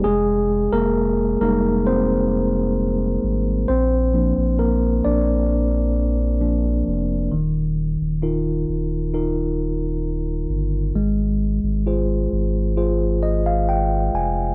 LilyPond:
<<
  \new Staff \with { instrumentName = "Tine electric piano" } { \time 4/4 \key ees \major \tempo 4 = 66 << { <aes aes'>8. <bes bes'>8. <bes bes'>8 <c' c''>2 | <c' c''>4 <bes bes'>8 <d' d''>4. r4 | r1 | r2 r8 ees''16 f''16 g''8 aes''8 | } \\ { r4. <g aes ees'>4. r4 | r8 <f bes d'>4. r4 <f bes d'>8 r8 | ees4 <ees' f' bes'>4 <ees' f' bes'>4 r4 | aes4 <f' aes' c''>4 <f' aes' c''>4 r4 | } >> }
  \new Staff \with { instrumentName = "Sub bass" } { \clef bass \time 4/4 \key ees \major f,,8. f,,8. f,,2 aes,,8 | bes,,8. bes,,8. bes,,2 f,,8 | ees,,8. ees,,8. ees,,2 g,,8 | aes,,8. aes,,8. aes,,2 f,,8 | }
>>